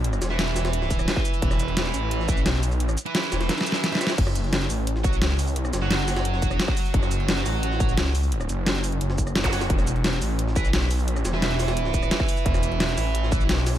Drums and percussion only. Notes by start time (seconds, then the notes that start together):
0.04 closed hi-hat
0.13 cross-stick, shaker
0.22 snare, closed hi-hat, shaker
0.30 snare
0.39 snare, closed hi-hat
0.48 closed hi-hat
0.56 snare, closed hi-hat, shaker
0.65 snare, closed hi-hat
0.73 closed hi-hat
0.82 snare
0.91 kick, closed hi-hat, shaker
0.99 cross-stick, shaker
1.08 snare, closed hi-hat
1.16 kick, cross-stick
1.25 closed hi-hat, shaker
1.34 closed hi-hat, shaker
1.42 kick, closed hi-hat
1.51 cross-stick, snare, shaker
1.60 closed hi-hat, shaker
1.68 closed hi-hat
1.77 snare, closed hi-hat
1.85 snare, closed hi-hat
1.94 closed hi-hat, shaker
2.11 closed hi-hat
2.20 snare
2.29 kick, closed hi-hat, shaker
2.37 shaker
2.46 snare, closed hi-hat
2.54 snare
2.63 closed hi-hat, open hi-hat, shaker
2.72 shaker
2.80 closed hi-hat
2.89 cross-stick, shaker
2.97 closed hi-hat, shaker
3.06 closed hi-hat
3.15 snare, closed hi-hat
3.23 snare, closed hi-hat
3.32 snare, closed hi-hat, shaker
3.41 snare, closed hi-hat
3.49 snare, closed hi-hat
3.58 snare, closed hi-hat
3.61 snare
3.66 closed hi-hat, shaker
3.72 snare, shaker
3.84 snare, closed hi-hat
3.92 snare, closed hi-hat
4.01 snare, closed hi-hat, shaker
4.07 snare
4.10 snare, closed hi-hat, shaker
4.18 kick, closed hi-hat, crash
4.27 cross-stick, snare, shaker
4.35 closed hi-hat, shaker
4.44 closed hi-hat
4.53 snare, closed hi-hat
4.61 snare, closed hi-hat
4.70 closed hi-hat, open hi-hat, shaker
4.87 closed hi-hat
4.96 snare
5.04 kick, closed hi-hat, shaker
5.13 shaker
5.22 snare, closed hi-hat
5.30 snare
5.39 open hi-hat, shaker
5.47 shaker
5.56 closed hi-hat
5.65 cross-stick, shaker
5.73 snare, closed hi-hat, shaker
5.82 snare
5.91 snare, closed hi-hat
5.99 closed hi-hat
6.08 snare, closed hi-hat, open hi-hat, shaker
6.16 snare, closed hi-hat
6.25 closed hi-hat
6.34 snare
6.42 kick, closed hi-hat, shaker
6.51 cross-stick, shaker
6.60 snare, closed hi-hat
6.68 kick, cross-stick
6.77 closed hi-hat, open hi-hat, shaker
6.85 closed hi-hat, shaker
6.94 kick, closed hi-hat
7.03 cross-stick, snare, shaker
7.11 closed hi-hat, shaker
7.20 closed hi-hat
7.29 snare, closed hi-hat
7.37 snare, closed hi-hat
7.46 snare, closed hi-hat, open hi-hat, shaker
7.63 closed hi-hat
7.72 snare
7.80 kick, closed hi-hat, shaker
7.89 shaker
7.97 snare, closed hi-hat
8.06 snare
8.15 open hi-hat, shaker
8.23 shaker
8.32 closed hi-hat
8.41 cross-stick, shaker
8.49 closed hi-hat, shaker
8.66 snare, closed hi-hat
8.75 snare, closed hi-hat
8.84 closed hi-hat, open hi-hat, shaker
8.92 closed hi-hat
9.01 closed hi-hat
9.10 snare
9.18 kick, closed hi-hat, shaker
9.27 cross-stick, shaker
9.35 snare, closed hi-hat
9.44 kick, cross-stick, snare, closed hi-hat
9.53 snare, closed hi-hat, open hi-hat, shaker
9.61 snare, closed hi-hat, shaker
9.70 kick, closed hi-hat
9.79 cross-stick, snare, shaker
9.87 closed hi-hat, shaker
9.96 closed hi-hat
10.04 snare, closed hi-hat
10.13 snare, closed hi-hat
10.22 closed hi-hat, open hi-hat, shaker
10.39 closed hi-hat
10.48 snare
10.56 kick, closed hi-hat, shaker
10.65 shaker
10.73 snare, closed hi-hat
10.82 snare
10.91 open hi-hat, shaker
10.99 shaker
11.08 closed hi-hat
11.16 cross-stick, shaker
11.25 snare, closed hi-hat, shaker
11.34 snare
11.42 snare, closed hi-hat
11.51 closed hi-hat
11.60 snare, closed hi-hat, open hi-hat, shaker
11.68 snare, closed hi-hat
11.77 closed hi-hat
11.85 snare
11.94 kick, closed hi-hat, shaker
12.03 cross-stick, shaker
12.11 snare, closed hi-hat
12.20 kick, cross-stick
12.29 closed hi-hat, open hi-hat, shaker
12.37 closed hi-hat, shaker
12.46 kick, closed hi-hat
12.54 cross-stick, snare, shaker
12.63 closed hi-hat, shaker
12.72 closed hi-hat
12.80 snare, closed hi-hat
12.89 snare, closed hi-hat
12.97 snare, closed hi-hat, open hi-hat, shaker
13.15 closed hi-hat
13.23 snare
13.32 kick, closed hi-hat, shaker
13.41 shaker
13.49 snare, closed hi-hat
13.58 snare
13.66 snare, closed hi-hat, open hi-hat, shaker
13.75 snare, shaker